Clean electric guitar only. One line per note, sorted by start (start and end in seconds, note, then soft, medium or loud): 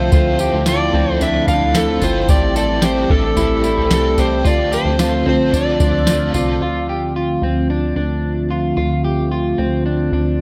0.00 0.12 F4 medium
0.13 0.40 F4 loud
0.40 0.66 G4 medium
0.67 0.94 F4 medium
0.94 1.21 C4 medium
1.21 1.47 D4 medium
1.48 2.02 D4 medium
2.02 2.29 F4 medium
2.29 2.56 G4 medium
2.56 2.82 A4 medium
2.83 3.10 G4 medium
3.10 3.37 D4 medium
3.37 3.63 E4 medium
3.64 4.18 E4 medium
4.18 4.44 G4 medium
4.45 4.72 F4 loud
4.72 4.99 G4 medium
4.99 5.26 F4 medium
5.26 5.53 C4 medium
5.53 5.79 D4 medium
5.81 6.34 D4 medium
6.34 6.61 F4 medium
6.62 6.89 F4 medium
6.89 7.16 G4 medium
7.16 7.43 F4 medium
7.43 7.70 C4 medium
7.70 7.95 D4 medium
7.96 8.50 D4 medium
8.51 8.76 F4 medium
8.77 9.04 F4 medium
9.04 9.31 G4 medium
9.31 9.58 F4 medium
9.58 9.85 C4 medium
9.86 10.12 D4 medium
10.13 10.41 D4 medium